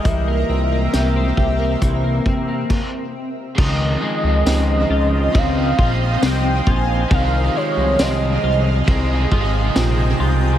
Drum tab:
CC |------x-|x-------|--------|
RD |--------|--x-x-x-|x-x-x-x-|
HH |x-x-x---|--------|--------|
TB |--------|--x---x-|--x---x-|
SD |--o-----|--o---o-|--o---o-|
BD |o--oooo-|o---oo-o|o---oo--|